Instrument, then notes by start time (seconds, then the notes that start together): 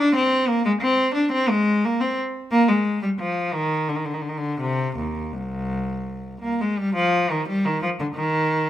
cello
0.00 D4
0.16 C4
0.48 A#3
0.65 G#3
0.82 C4
1.15 D4
1.32 C4
1.49 G#3
1.85 A#3
2.00 C4
2.51 A#3
2.69 G#3
3.03 G3
3.20 F3
3.53 D#3
3.89 D3
3.96 D#3
4.05 D3
4.14 D#3
4.22 D3
4.29 D#3
4.38 D3
4.61 C3
4.97 D#2
5.32 C2
6.41 A#3
6.61 G#3
6.79 G3
6.95 F3
7.31 D#3
7.49 G3
7.65 D#3
7.82 F3
8.00 D3
8.15 D#3